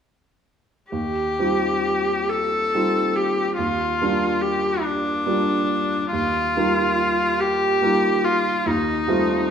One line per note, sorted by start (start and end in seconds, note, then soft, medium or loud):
0.92 1.36 D#2 soft
0.92 2.31 G4 soft
1.39 2.70 G3 soft
1.39 2.70 C4 soft
1.39 2.70 D#4 soft
1.39 2.70 F4 soft
2.29 3.17 A4 medium
2.74 3.55 G3 soft
2.74 3.55 C4 soft
2.74 3.55 D#4 soft
2.74 3.55 F4 soft
3.15 3.57 G4 soft
3.57 3.99 D#2 soft
3.57 4.43 F4 soft
4.01 5.22 G3 soft
4.01 5.23 A#3 soft
4.01 5.23 D4 soft
4.01 5.23 F4 soft
4.42 4.85 G4 medium
4.83 6.11 D4 medium
5.26 6.09 G3 soft
5.26 6.09 A#3 soft
5.26 6.09 D4 soft
5.26 6.10 F4 soft
6.12 6.55 D#2 soft
6.12 7.42 F4 medium
6.57 7.79 G3 soft
6.57 7.79 A#3 soft
6.57 7.79 D#4 soft
6.57 7.79 F4 soft
7.40 8.26 G4 medium
7.82 8.63 G3 soft
7.82 8.63 A#3 soft
7.82 8.64 D#4 soft
7.82 8.63 F4 soft
8.25 8.69 F4 medium
8.66 9.07 D#2 soft
8.66 9.51 D#4 medium
9.07 9.51 G3 soft
9.07 9.51 A3 soft
9.07 9.51 C4 soft
9.07 9.51 F4 soft